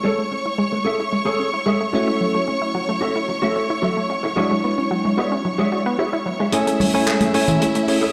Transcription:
Already playing: A3 C#4 E4 C#5 G#5 C#6
0.04 G#3 G#4 A4 C#5
0.18 A3
0.31 C#4, muted clean electric guitar stroke
0.46 E4
0.58 G#3
0.72 A3, muted clean electric guitar stroke
0.85 C#4 G#4 A4 E5
1.00 E4
1.12 G#3, muted clean electric guitar stroke
1.25 A3 G#4 A4 C#5
1.40 C#4
1.54 E4
1.66 G#3 G#4 A4 E5
1.81 A3
1.93 A3 C#4 E4 F#4 A4 C#5 E5
2.08 E4
2.21 F#3
2.35 A3
2.47 C#4, muted clean electric guitar stroke
2.62 E4
2.75 F#3
2.88 A3, muted clean electric guitar stroke
3.01 C#4 F#4 A4 E5
3.16 E4
3.28 F#3, muted clean electric guitar stroke
3.42 A3 F#4 A4 E5
3.56 C#4
3.70 E4
3.82 F#3 F#4 A4 E5
3.97 A3
4.09 C#4, muted clean electric guitar stroke
4.23 E4, muted clean electric guitar stroke
4.36 F#3 G#3 D4 E4 F#4 G#4 C#5 D5 E5 C#6
4.51 G#3
4.63 B3, muted clean electric guitar stroke
4.78 C#4
4.91 F#3
5.04 G#3, muted clean electric guitar stroke
5.17 B3 F#4 G#4 C#5 D5 E5
5.32 C#4
5.44 F#3, muted clean electric guitar stroke
5.58 G#3 F#4 G#4 C#5 D5 E5
5.72 F#4
5.86 B3
5.98 E4 F#4 G#4 C#5 D5 E5
6.13 E4
6.25 F#3, muted clean electric guitar stroke
6.39 G#3, muted clean electric guitar stroke
6.52 G#3 A3 C#4 E4 G#4 A4 C#5 E5 G#5, closed hi-hat
6.67 A3, closed hi-hat
6.80 C#4, open hi-hat, high conga
6.94 A3 C#4 E4 C#5 G#5
7.06 G#3 G#4 A4 E5, clap, closed hi-hat
7.21 A3, closed hi-hat, muted conga
7.34 A3 C#4 E4 C#5 G#5, open hi-hat
7.48 E4, closed hi-hat, low conga
7.60 G#3, muted clean electric guitar stroke, closed hi-hat
7.74 A3, muted clean electric guitar stroke, closed hi-hat
7.88 A3 C#4 E4 G#4 C#5, open hi-hat
8.01 E4 G#4 A4 C#5

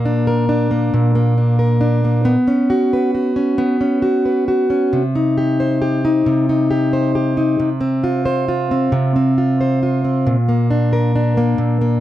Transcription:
Already playing: A#2 A#3
0.05 D4
0.27 A#4
0.49 D4
0.71 A#3
0.94 A#2
1.15 A#3
1.38 D4
1.59 A#4
1.81 D4
2.04 A#3
2.25 B3
2.48 C#4
2.70 F#4
2.93 B4
3.15 F#4
3.36 C#4
3.58 B3
3.81 C#4
4.02 F#4
4.25 B4
4.48 F#4
4.70 C#4
4.93 C3
5.16 D#4
5.38 G4
5.60 C5
5.82 G4
6.05 D#4
6.26 C3
6.49 D#4
6.71 G4
6.93 C5
7.15 G4
7.37 D#4
7.60 C3
7.81 C4
8.04 F4
8.26 C5
8.48 F4
8.71 C4
8.92 C3
9.16 C4
9.38 F4
9.61 C5
9.83 F4
10.04 C4
10.27 A#2
10.49 A#3
10.71 D4
10.93 A#4
11.15 D4
11.37 A#3
11.58 A#2
11.81 A#3

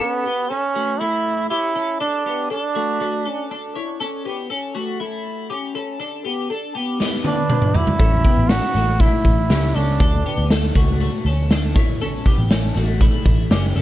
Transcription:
0.00 B3 C#4 A4
0.25 B3 G4
0.49 C#4 A4
0.76 A3 F#4
1.00 A3 E4
1.50 C#4 E4 G4
1.76 C#4 A4
2.00 D4 A4
2.26 B3 G4
2.50 D4 A4
2.75 A3 F#4
3.00 A3 F#4
3.25 C#4 A4
3.51 D4 A4
3.75 E4 C#5
4.00 C#4 A4
4.25 B3 G4
4.50 C#4 A4
4.75 A3 F#4
5.00 A3 E4
5.50 C#4 G4
5.75 C#4 A4
6.00 D4 A4
6.25 B3 G4
6.50 D4 A4
6.75 B3 G4
7.00 B3 G4, snare
7.24 D4 B4, high tom
7.50 D4 B4, mid tom
7.62 mid tom
7.74 E4 F#4 D5, floor tom
7.87 floor tom
7.99 A1 C#4 A4, kick, closed hi-hat
8.25 B3 G4, kick, closed hi-hat
8.38 A1
8.49 C#4 F#4 A4, snare, closed hi-hat
8.74 A1 A3 F#4, snare, closed hi-hat
9.00 A3 E4, kick, closed hi-hat
9.25 A1, kick, closed hi-hat
9.50 C#2 C#4 G4, snare, closed hi-hat
9.75 C#2 C#4 D4 A4, open hi-hat
10.00 D2 D4 A4, kick, closed hi-hat
10.26 B3 G4, closed hi-hat
10.38 D2
10.50 D4 A4, snare, closed hi-hat
10.75 C#2 A3 F#4, kick, closed hi-hat
11.00 A3 F#4, closed hi-hat
11.25 D2 C#4 A4, closed hi-hat
11.50 D4 A4, snare, closed hi-hat
11.76 A1 E4 C#5, kick, open hi-hat
12.01 C#4 A4, closed hi-hat
12.26 B3 G4, kick, closed hi-hat
12.38 A1
12.51 C#4 A4, snare, closed hi-hat
12.75 A1 A3 F#4, snare, closed hi-hat
13.00 A3 E4, kick, closed hi-hat
13.25 A1, kick, closed hi-hat
13.51 F#1 C#4 G4, snare, closed hi-hat
13.75 F#1 C#4 A4, open hi-hat

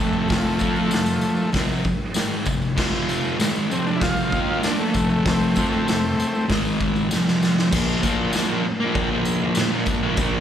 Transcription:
Already playing: F2 C3 A3
0.00 F3
0.13 tambourine
0.28 F3 A3, kick, open hi-hat, tambourine
0.32 snare
0.59 F3 C4 F4, kick, tambourine
0.76 tambourine
0.90 F2 C3, snare, open hi-hat, tambourine
1.06 tambourine
1.21 muted distorted electric guitar stroke, tambourine
1.36 tambourine
1.52 F2 C3 F3, kick, snare, open hi-hat, tambourine
1.69 tambourine
1.84 muted distorted electric guitar stroke, kick, tambourine
2.14 G#2 D#3 G#3, snare, open hi-hat, tambourine
2.45 F2 C3, kick, tambourine
2.62 tambourine
2.76 F2 C3 F3, kick, snare, crash, tambourine
3.09 tambourine
3.25 tambourine
3.39 G#2 D#3 G#3, snare, open hi-hat, tambourine
3.55 tambourine
3.69 F2 C3 F3 C4, tambourine
3.86 D4, tambourine
3.96 E4
4.01 F4, kick, snare, open hi-hat, tambourine
4.17 tambourine
4.31 D#3 A#3 D#4, kick, tambourine
4.63 A#2 F3 A#3 D4, snare, open hi-hat, tambourine
4.80 A3
4.94 F2 C3 F3, kick, tambourine
5.10 tambourine
5.25 A3 C4, kick, snare, open hi-hat, tambourine
5.41 tambourine
5.56 F3 C4 F4, kick, tambourine
5.72 tambourine
5.87 F2 C3, snare, open hi-hat, tambourine
6.18 muted distorted electric guitar stroke, tambourine
6.35 tambourine
6.48 G#2 D#3 G#3, kick, snare, open hi-hat, tambourine
6.65 tambourine
6.80 kick, tambourine
6.96 tambourine
7.10 F2 C3 F3, snare, tambourine
7.27 snare, tambourine
7.42 snare, tambourine
7.58 snare, tambourine
7.71 A#2 F3, kick, crash, tambourine
7.76 A#3
8.02 A#2 F3, kick, tambourine
8.07 A#3
8.32 A#2 F3, snare, tambourine, crash
8.37 A#3
8.48 A#3
8.53 F3
8.65 muted distorted electric guitar stroke
8.80 A#3
8.85 F3
8.95 kick, crash
9.11 A#3
9.15 F3
9.25 tambourine
9.42 A#3
9.46 F3
9.55 A#2, snare, tambourine, crash
9.60 F3 A#3
9.72 A#3
9.77 F3
9.86 A#2 F3, kick, tambourine
9.91 A#3
10.02 A#3
10.07 F3
10.16 A#2 F3, kick, tambourine, crash
10.21 A#3

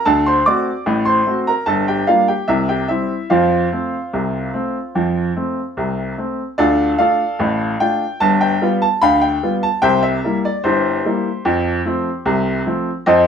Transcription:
0.05 D2 D3 A4 A5
0.26 C5 C6
0.46 A3 C4 F#4 D5 D6
0.86 A1 A2
1.05 C5 C6
1.26 A3 C4 F#4
1.47 A#4 A#5
1.66 G1 G2 A4 A5
1.88 G4 G5
2.07 G3 A#3 D4 F4 F5
2.28 G4 G5
2.48 C2 C3 E4 E5
2.69 G4 G5
2.88 G3 C4 E4 E5
3.30 F2 F3 F4 C5 F5
3.72 A3 C4
4.13 C2 C3
4.54 A3 C4
4.95 F2 F3
5.36 A3 C4
5.77 C2 C3
6.18 A3 C4
6.58 D2 D3 F4 A4 D5
6.98 A3 D4 F4 A4 D5 F5
7.39 A1 A2
7.80 A3 D4 F4 G5
8.20 G1 G2 A5
8.41 G5
8.62 G3 B3 F4
8.82 A5
9.02 D2 D3 F5 G5 B5
9.21 G5
9.43 G3 B3 F4
9.63 A5
9.82 C2 C3 C5 E5 G5
10.03 E5
10.24 G3 A#3 E4
10.45 D5
10.64 G1 G2 E4 G4 C5
11.05 G3 A#3 E4
11.45 F2 F3
11.85 F3 A3 C4
12.26 C2 C3
12.66 F3 A3 C4
13.06 F2 F3 A4 C5 D#5

